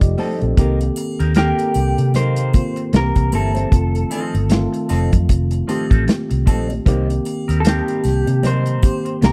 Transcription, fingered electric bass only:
0, 0, Header, 1, 2, 480
1, 0, Start_track
1, 0, Tempo, 785958
1, 352, Time_signature, 4, 2, 24, 8
1, 5695, End_track
2, 0, Start_track
2, 0, Title_t, "Fingered electric bass"
2, 0, Program_c, 0, 33
2, 9, Note_on_c, 0, 29, 78
2, 90, Note_off_c, 0, 29, 0
2, 258, Note_on_c, 0, 34, 85
2, 336, Note_off_c, 0, 34, 0
2, 351, Note_on_c, 0, 36, 92
2, 543, Note_off_c, 0, 36, 0
2, 734, Note_on_c, 0, 39, 81
2, 925, Note_off_c, 0, 39, 0
2, 1072, Note_on_c, 0, 36, 87
2, 1183, Note_off_c, 0, 36, 0
2, 1211, Note_on_c, 0, 48, 91
2, 1595, Note_off_c, 0, 48, 0
2, 1791, Note_on_c, 0, 36, 94
2, 1903, Note_off_c, 0, 36, 0
2, 1929, Note_on_c, 0, 36, 85
2, 2010, Note_off_c, 0, 36, 0
2, 2034, Note_on_c, 0, 31, 86
2, 2225, Note_off_c, 0, 31, 0
2, 2272, Note_on_c, 0, 29, 104
2, 2463, Note_off_c, 0, 29, 0
2, 2653, Note_on_c, 0, 31, 90
2, 2844, Note_off_c, 0, 31, 0
2, 2996, Note_on_c, 0, 29, 93
2, 3106, Note_off_c, 0, 29, 0
2, 3133, Note_on_c, 0, 41, 95
2, 3212, Note_off_c, 0, 41, 0
2, 3234, Note_on_c, 0, 29, 83
2, 3424, Note_off_c, 0, 29, 0
2, 3611, Note_on_c, 0, 33, 91
2, 3691, Note_off_c, 0, 33, 0
2, 3854, Note_on_c, 0, 36, 79
2, 3953, Note_off_c, 0, 36, 0
2, 3953, Note_on_c, 0, 34, 85
2, 4144, Note_off_c, 0, 34, 0
2, 4191, Note_on_c, 0, 36, 97
2, 4383, Note_off_c, 0, 36, 0
2, 4573, Note_on_c, 0, 39, 92
2, 4764, Note_off_c, 0, 39, 0
2, 4915, Note_on_c, 0, 36, 88
2, 5025, Note_off_c, 0, 36, 0
2, 5053, Note_on_c, 0, 48, 96
2, 5436, Note_off_c, 0, 48, 0
2, 5635, Note_on_c, 0, 36, 100
2, 5695, Note_off_c, 0, 36, 0
2, 5695, End_track
0, 0, End_of_file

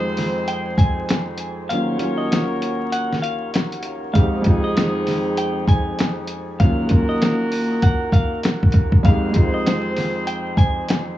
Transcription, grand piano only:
0, 0, Header, 1, 2, 480
1, 0, Start_track
1, 0, Tempo, 612245
1, 1334, Time_signature, 4, 2, 24, 8
1, 8764, End_track
2, 0, Start_track
2, 0, Title_t, "Grand piano"
2, 0, Program_c, 0, 0
2, 0, Control_c, 0, 64, 127
2, 0, Note_on_c, 0, 41, 79
2, 0, Note_on_c, 0, 56, 71
2, 0, Note_on_c, 0, 60, 74
2, 0, Note_on_c, 0, 63, 72
2, 0, Note_on_c, 0, 65, 86
2, 0, Note_on_c, 0, 67, 86
2, 456, Note_off_c, 0, 41, 0
2, 461, Note_off_c, 0, 56, 0
2, 466, Note_off_c, 0, 60, 0
2, 471, Note_off_c, 0, 63, 0
2, 475, Note_off_c, 0, 65, 0
2, 1332, Note_on_c, 0, 39, 75
2, 1342, Note_on_c, 0, 54, 71
2, 1344, Control_c, 0, 64, 0
2, 1351, Note_off_c, 0, 67, 0
2, 1351, Note_on_c, 0, 58, 75
2, 1362, Note_on_c, 0, 61, 75
2, 1371, Note_on_c, 0, 65, 79
2, 1497, Control_c, 0, 64, 127
2, 1530, Note_off_c, 0, 39, 0
2, 1539, Note_off_c, 0, 54, 0
2, 1542, Note_on_c, 0, 39, 72
2, 1549, Note_off_c, 0, 58, 0
2, 1551, Note_on_c, 0, 54, 69
2, 1556, Note_off_c, 0, 61, 0
2, 1560, Note_off_c, 0, 65, 0
2, 1561, Note_on_c, 0, 58, 71
2, 1571, Note_on_c, 0, 61, 71
2, 1581, Note_on_c, 0, 65, 81
2, 2375, Note_off_c, 0, 39, 0
2, 2380, Note_off_c, 0, 54, 0
2, 2385, Note_off_c, 0, 58, 0
2, 2390, Note_off_c, 0, 61, 0
2, 2394, Note_off_c, 0, 65, 0
2, 3241, Note_on_c, 0, 41, 77
2, 3250, Note_on_c, 0, 56, 69
2, 3260, Note_on_c, 0, 60, 71
2, 3264, Control_c, 0, 64, 0
2, 3270, Note_on_c, 0, 63, 71
2, 3280, Note_on_c, 0, 67, 85
2, 3390, Control_c, 0, 64, 127
2, 3453, Note_off_c, 0, 41, 0
2, 3460, Note_off_c, 0, 56, 0
2, 3465, Note_off_c, 0, 60, 0
2, 3465, Note_on_c, 0, 41, 82
2, 3470, Note_off_c, 0, 63, 0
2, 3474, Note_on_c, 0, 56, 72
2, 3475, Note_off_c, 0, 67, 0
2, 3485, Note_on_c, 0, 60, 70
2, 3494, Note_on_c, 0, 63, 73
2, 3504, Note_on_c, 0, 65, 86
2, 4297, Note_off_c, 0, 41, 0
2, 4301, Note_off_c, 0, 56, 0
2, 4307, Note_off_c, 0, 60, 0
2, 4311, Note_off_c, 0, 63, 0
2, 4316, Note_off_c, 0, 65, 0
2, 5173, Note_on_c, 0, 39, 73
2, 5182, Note_on_c, 0, 54, 70
2, 5185, Control_c, 0, 64, 0
2, 5192, Note_on_c, 0, 58, 77
2, 5202, Note_on_c, 0, 61, 71
2, 5212, Note_on_c, 0, 65, 79
2, 5331, Control_c, 0, 64, 127
2, 5370, Note_off_c, 0, 39, 0
2, 5380, Note_off_c, 0, 54, 0
2, 5382, Note_on_c, 0, 39, 74
2, 5389, Note_off_c, 0, 58, 0
2, 5391, Note_on_c, 0, 54, 66
2, 5396, Note_off_c, 0, 61, 0
2, 5401, Note_off_c, 0, 65, 0
2, 5401, Note_on_c, 0, 58, 71
2, 5411, Note_on_c, 0, 61, 71
2, 5421, Note_on_c, 0, 65, 82
2, 6215, Note_off_c, 0, 39, 0
2, 6220, Note_off_c, 0, 54, 0
2, 6225, Note_off_c, 0, 58, 0
2, 6230, Note_off_c, 0, 61, 0
2, 6235, Note_off_c, 0, 65, 0
2, 7081, Note_on_c, 0, 41, 83
2, 7092, Note_on_c, 0, 56, 72
2, 7101, Note_on_c, 0, 60, 69
2, 7103, Control_c, 0, 64, 0
2, 7111, Note_on_c, 0, 63, 70
2, 7120, Note_on_c, 0, 67, 84
2, 7234, Control_c, 0, 64, 127
2, 7291, Note_off_c, 0, 41, 0
2, 7301, Note_off_c, 0, 56, 0
2, 7303, Note_on_c, 0, 41, 80
2, 7305, Note_off_c, 0, 60, 0
2, 7310, Note_off_c, 0, 63, 0
2, 7313, Note_on_c, 0, 56, 72
2, 7315, Note_off_c, 0, 67, 0
2, 7322, Note_on_c, 0, 60, 72
2, 7332, Note_on_c, 0, 63, 70
2, 7342, Note_on_c, 0, 65, 91
2, 8136, Note_off_c, 0, 41, 0
2, 8141, Note_off_c, 0, 56, 0
2, 8145, Note_off_c, 0, 60, 0
2, 8150, Note_off_c, 0, 63, 0
2, 8155, Note_off_c, 0, 65, 0
2, 8764, End_track
0, 0, End_of_file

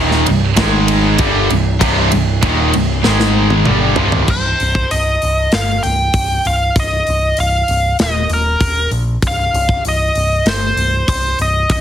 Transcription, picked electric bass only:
0, 0, Header, 1, 2, 480
1, 0, Start_track
1, 0, Key_signature, -3, "minor"
1, 0, Tempo, 617920
1, 1409, Time_signature, 4, 2, 24, 8
1, 9172, End_track
2, 0, Start_track
2, 0, Title_t, "Picked electric bass"
2, 0, Program_c, 0, 34
2, 0, Note_on_c, 0, 27, 85
2, 194, Note_off_c, 0, 27, 0
2, 216, Note_on_c, 0, 24, 84
2, 437, Note_off_c, 0, 24, 0
2, 445, Note_on_c, 0, 32, 105
2, 896, Note_off_c, 0, 32, 0
2, 926, Note_on_c, 0, 31, 93
2, 1151, Note_off_c, 0, 31, 0
2, 1172, Note_on_c, 0, 24, 72
2, 1394, Note_off_c, 0, 24, 0
2, 1408, Note_on_c, 0, 24, 82
2, 1631, Note_off_c, 0, 24, 0
2, 1652, Note_on_c, 0, 24, 88
2, 1873, Note_off_c, 0, 24, 0
2, 1883, Note_on_c, 0, 27, 92
2, 2108, Note_off_c, 0, 27, 0
2, 2132, Note_on_c, 0, 24, 76
2, 2353, Note_off_c, 0, 24, 0
2, 2375, Note_on_c, 0, 32, 94
2, 2819, Note_off_c, 0, 32, 0
2, 2857, Note_on_c, 0, 31, 96
2, 3076, Note_off_c, 0, 31, 0
2, 3096, Note_on_c, 0, 24, 80
2, 3315, Note_off_c, 0, 24, 0
2, 3325, Note_on_c, 0, 24, 76
2, 3518, Note_off_c, 0, 24, 0
2, 3575, Note_on_c, 0, 24, 83
2, 3765, Note_off_c, 0, 24, 0
2, 3820, Note_on_c, 0, 24, 82
2, 4007, Note_off_c, 0, 24, 0
2, 4060, Note_on_c, 0, 24, 86
2, 4247, Note_off_c, 0, 24, 0
2, 4298, Note_on_c, 0, 31, 85
2, 4486, Note_off_c, 0, 31, 0
2, 4539, Note_on_c, 0, 24, 80
2, 4727, Note_off_c, 0, 24, 0
2, 4769, Note_on_c, 0, 24, 75
2, 4961, Note_off_c, 0, 24, 0
2, 5014, Note_on_c, 0, 24, 82
2, 5204, Note_off_c, 0, 24, 0
2, 5249, Note_on_c, 0, 24, 79
2, 5441, Note_off_c, 0, 24, 0
2, 5500, Note_on_c, 0, 24, 94
2, 5687, Note_off_c, 0, 24, 0
2, 5732, Note_on_c, 0, 24, 83
2, 5923, Note_off_c, 0, 24, 0
2, 5970, Note_on_c, 0, 24, 82
2, 6161, Note_off_c, 0, 24, 0
2, 6215, Note_on_c, 0, 27, 92
2, 6405, Note_off_c, 0, 27, 0
2, 6443, Note_on_c, 0, 27, 80
2, 6637, Note_off_c, 0, 27, 0
2, 6686, Note_on_c, 0, 27, 82
2, 6879, Note_off_c, 0, 27, 0
2, 6921, Note_on_c, 0, 34, 86
2, 7116, Note_off_c, 0, 34, 0
2, 7167, Note_on_c, 0, 24, 73
2, 7360, Note_off_c, 0, 24, 0
2, 7407, Note_on_c, 0, 24, 91
2, 7600, Note_off_c, 0, 24, 0
2, 7650, Note_on_c, 0, 24, 87
2, 7842, Note_off_c, 0, 24, 0
2, 7886, Note_on_c, 0, 24, 86
2, 8079, Note_off_c, 0, 24, 0
2, 8120, Note_on_c, 0, 31, 93
2, 8316, Note_off_c, 0, 31, 0
2, 8360, Note_on_c, 0, 24, 86
2, 8556, Note_off_c, 0, 24, 0
2, 8604, Note_on_c, 0, 24, 86
2, 8798, Note_off_c, 0, 24, 0
2, 8849, Note_on_c, 0, 24, 82
2, 9041, Note_off_c, 0, 24, 0
2, 9090, Note_on_c, 0, 24, 84
2, 9172, Note_off_c, 0, 24, 0
2, 9172, End_track
0, 0, End_of_file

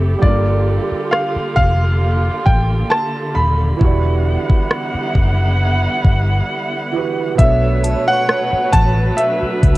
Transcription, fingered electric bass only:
0, 0, Header, 1, 3, 480
1, 0, Start_track
1, 0, Tempo, 895522
1, 121, Time_signature, 4, 2, 24, 8
1, 5242, End_track
2, 0, Start_track
2, 0, Title_t, "Fingered electric bass"
2, 0, Program_c, 0, 33
2, 0, Note_on_c, 0, 30, 87
2, 72, Note_off_c, 0, 30, 0
2, 121, Note_on_c, 0, 31, 101
2, 415, Note_off_c, 0, 31, 0
2, 841, Note_on_c, 0, 29, 87
2, 1223, Note_off_c, 0, 29, 0
2, 1321, Note_on_c, 0, 33, 81
2, 1512, Note_off_c, 0, 33, 0
2, 1801, Note_on_c, 0, 27, 87
2, 1992, Note_off_c, 0, 27, 0
2, 2042, Note_on_c, 0, 28, 99
2, 2335, Note_off_c, 0, 28, 0
2, 2762, Note_on_c, 0, 30, 85
2, 3143, Note_off_c, 0, 30, 0
2, 3241, Note_on_c, 0, 31, 85
2, 3432, Note_off_c, 0, 31, 0
2, 3961, Note_on_c, 0, 35, 100
2, 4255, Note_off_c, 0, 35, 0
2, 4682, Note_on_c, 0, 33, 98
2, 4872, Note_off_c, 0, 33, 0
2, 5161, Note_on_c, 0, 37, 93
2, 5242, Note_off_c, 0, 37, 0
2, 5242, End_track
3, 0, Start_track
3, 0, Title_t, "Muted fingered electric bass strokes"
3, 491, Note_on_c, 9, 29, 43
3, 545, Note_off_c, 9, 29, 0
3, 729, Note_on_c, 9, 29, 46
3, 783, Note_off_c, 9, 29, 0
3, 2411, Note_on_c, 9, 29, 44
3, 2465, Note_off_c, 9, 29, 0
3, 2650, Note_on_c, 9, 29, 43
3, 2704, Note_off_c, 9, 29, 0
3, 4571, Note_on_c, 9, 29, 45
3, 4624, Note_off_c, 9, 29, 0
3, 5051, Note_on_c, 9, 29, 47
3, 5105, Note_off_c, 9, 29, 0
3, 5242, End_track
0, 0, End_of_file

